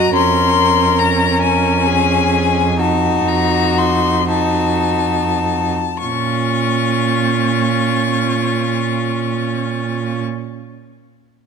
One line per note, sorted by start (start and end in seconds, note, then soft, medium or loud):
0.00 0.14 F#2 medium
0.00 0.12 F#4 medium
0.00 0.12 D#5 medium
0.00 0.13 A#5 medium
0.14 5.71 F2 medium
0.14 2.76 C#4 medium
0.14 1.88 A#4 medium
0.14 1.00 C6 medium
0.99 1.42 A#5 medium
1.42 2.77 G#5 medium
1.86 2.81 G#4 medium
2.79 4.26 D#4 soft
2.79 4.28 F#4 medium
2.79 3.30 A5 medium
3.28 3.80 A#5 medium
3.79 4.29 C6 medium
4.28 5.72 D#4 soft
4.28 5.71 F#4 soft
4.28 6.00 A5 medium
6.02 10.23 A#2 medium
6.02 10.22 C#4 soft
6.02 10.21 F4 soft
6.02 10.22 C#6 medium